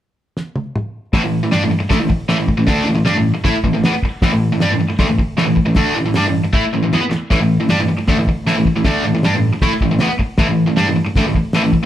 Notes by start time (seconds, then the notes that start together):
0.37 snare
0.56 high tom
0.76 mid tom
1.12 A2 E3, kick, snare, open hi-hat
1.23 A2 E3
1.43 A2 E3
1.51 G2 G3 D4, snare, open hi-hat
1.62 A2 E3
1.71 A2, muted overdriven electric guitar stroke
1.80 A2, muted overdriven electric guitar stroke
1.90 D2 D3 A3, kick, snare, open hi-hat
2.00 A2 E3
2.10 A2, muted overdriven electric guitar stroke, kick
2.28 A2 E3, snare, open hi-hat
2.38 A2 E3
2.48 A2, muted overdriven electric guitar stroke, kick
2.58 A2 E3
2.67 D2 D3 A3 D4, kick, snare, open hi-hat
2.85 A2 E3
2.95 A2 E3
3.05 G2 G3 D4, snare, open hi-hat
3.14 A2 E3
3.35 A2, muted overdriven electric guitar stroke
3.44 A2 A3 E4, kick, snare, open hi-hat
3.54 A2, muted overdriven electric guitar stroke
3.63 A2 E3, kick
3.74 A2 E3
3.83 E2 E3 B3, snare, open hi-hat
3.92 A2, muted overdriven electric guitar stroke
4.02 A2, muted overdriven electric guitar stroke, kick
4.22 A2 E3, kick, snare, open hi-hat
4.30 A2 E3
4.49 A2 E3
4.59 G2 G3 D4, snare, open hi-hat
4.69 A2 E3
4.79 A2, muted overdriven electric guitar stroke
4.89 A2, muted overdriven electric guitar stroke
4.99 D2 D3 A3, kick, snare, open hi-hat
5.08 A2 E3
5.18 A2, muted overdriven electric guitar stroke, kick
5.37 A2 E3, snare, open hi-hat
5.46 A2 E3
5.56 A2, muted overdriven electric guitar stroke, kick
5.66 A2 E3
5.75 D2 D3 A3 D4, kick, snare, open hi-hat
5.96 A2 E3
6.06 A2 E3
6.14 G2 G3 D4, snare, open hi-hat
6.25 A2 E3
6.45 A2, muted overdriven electric guitar stroke
6.53 A2 A3 E4, kick, snare
6.64 A2, muted overdriven electric guitar stroke
6.73 A2 E3
6.83 A2 E3
6.92 E2 E3 B3, snare
7.02 A2, muted overdriven electric guitar stroke
7.11 A2, muted overdriven electric guitar stroke, snare
7.30 A2 E3, kick, snare, open hi-hat
7.39 A2 E3
7.59 A2 E3
7.68 G2 G3 D4, snare, open hi-hat
7.78 A2 E3
7.89 A2, muted overdriven electric guitar stroke
7.98 A2, muted overdriven electric guitar stroke
8.07 D2 D3 A3, kick, snare, open hi-hat
8.16 A2 E3
8.27 A2, muted overdriven electric guitar stroke, kick
8.44 A2 E3, snare, open hi-hat
8.53 A2
8.57 A2 E3
8.65 A2, muted overdriven electric guitar stroke, kick
8.73 A2
8.77 E3
8.84 D2 D3 A3 D4, kick, snare, open hi-hat
9.03 A2 E3
9.12 A2 E3
9.23 G2 G3 D4, snare, open hi-hat
9.33 A2 E3
9.52 A2, muted overdriven electric guitar stroke
9.61 A2 A3 E4, kick, snare, open hi-hat
9.70 A2, muted overdriven electric guitar stroke
9.80 A2 E3, kick
9.89 A2 E3
9.99 E2 E3 B3, snare, open hi-hat
10.10 A2, muted overdriven electric guitar stroke
10.19 A2, muted overdriven electric guitar stroke, kick
10.37 A2 E3, kick, snare, open hi-hat
10.47 A2 E3
10.67 A2 E3
10.77 G2 G3 D4, snare, open hi-hat
10.86 A2 E3
10.96 A2, muted overdriven electric guitar stroke
11.06 A2, muted overdriven electric guitar stroke
11.15 D2 D3 A3, kick, snare, open hi-hat
11.25 A2 E3
11.34 A2, muted overdriven electric guitar stroke, kick
11.53 A2 E3, snare, open hi-hat
11.63 A2 E3
11.72 A2, muted overdriven electric guitar stroke, kick